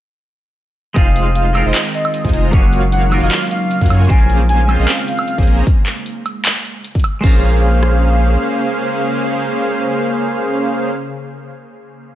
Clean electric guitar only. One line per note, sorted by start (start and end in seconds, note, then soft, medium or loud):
0.94 1.52 G#3 medium
0.94 1.52 C4 medium
0.94 1.53 D#4 medium
0.94 1.53 F4 medium
0.94 1.54 G#4 loud
1.53 2.50 G#3 medium
1.53 2.50 C4 medium
1.53 2.51 D#4 medium
1.53 2.51 F4 medium
1.57 2.52 A#4 loud
2.51 3.09 F#3 loud
2.51 3.09 A#3 medium
2.51 3.10 C#4 medium
2.51 3.11 G#4 loud
2.51 3.10 C#5 medium
3.10 4.07 F#3 medium
3.10 4.07 A#3 medium
3.10 4.08 C#4 medium
3.10 4.08 F4 medium
3.10 4.09 A#4 loud
4.08 4.66 G#3 loud
4.08 4.67 C#4 medium
4.08 4.67 F4 medium
4.08 4.66 C5 medium
4.12 4.68 A#4 loud
4.67 5.64 G#3 medium
4.67 5.64 C4 medium
4.67 5.65 C#4 medium
4.67 5.65 F4 medium
4.71 5.66 C5 loud
7.21 10.87 G#3 medium
7.21 10.90 C#4 medium
7.21 10.88 C5 medium
7.25 10.91 F4 medium
7.25 10.93 A#4 loud